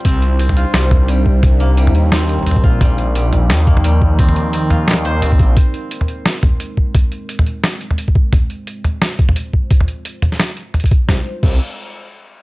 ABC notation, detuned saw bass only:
X:1
M:4/4
L:1/8
Q:"Swing 16ths" 1/4=174
K:Cm
V:1 name="Detuned saw bass" clef=bass
C,,3 z C,,4 | C,,3 E,,4 B,,,- | B,,,4 E,,4- | E,,6- E,, B,,, |
z8 | z8 | z8 | z8 |
C,, z C,, z4 z |]